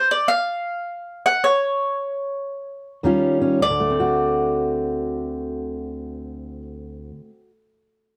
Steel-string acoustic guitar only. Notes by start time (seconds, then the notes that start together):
3.03 D#2 D#3 G3 C#4 F4
3.41 C#4
3.60 D2
3.70 D3
3.80 A3
3.90 C4
4.00 F#4